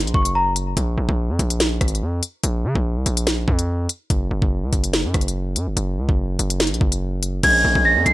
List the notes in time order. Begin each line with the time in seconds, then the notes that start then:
0.00 A#1, closed hi-hat
0.07 closed hi-hat
0.14 F#1 C#6, kick
0.25 closed hi-hat
0.35 A#5
0.56 closed hi-hat
0.77 A#1, kick, closed hi-hat
0.98 A#1
1.09 A#1, kick
1.29 F2
1.39 A#1, kick, closed hi-hat
1.50 closed hi-hat
1.60 snare, closed hi-hat
1.81 G#1, kick, cross-stick, closed hi-hat
1.88 closed hi-hat
1.95 closed hi-hat
2.02 F2
2.23 closed hi-hat
2.44 A#1, closed hi-hat
2.64 C#3
2.75 A#1, kick
2.96 C2
3.06 A#1, closed hi-hat
3.17 closed hi-hat
3.27 snare, closed hi-hat
3.48 F2, kick
3.59 closed hi-hat
3.89 closed hi-hat
4.10 F#1, kick, closed hi-hat
4.31 F#1
4.42 F#1, kick
4.63 C#2
4.73 F#1, kick, closed hi-hat
4.84 closed hi-hat
4.93 snare, closed hi-hat
5.04 F#2
5.14 F#1, kick, cross-stick, closed hi-hat
5.21 closed hi-hat
5.28 closed hi-hat
5.56 F#2, closed hi-hat
5.67 F#1
5.77 F#1, closed hi-hat
5.98 C#2
6.09 F#1, kick
6.39 F#1, closed hi-hat
6.50 closed hi-hat
6.60 snare, closed hi-hat
6.67 closed hi-hat
6.71 A#1, closed hi-hat
6.81 F#1, kick
6.92 closed hi-hat
7.23 closed hi-hat
7.43 A#1 G#3 A#3 C#4 G#6, kick, closed hi-hat, crash
7.64 A#1
7.75 A#1, kick
7.85 A#6
7.96 F2
8.06 A#1 C7, kick, closed hi-hat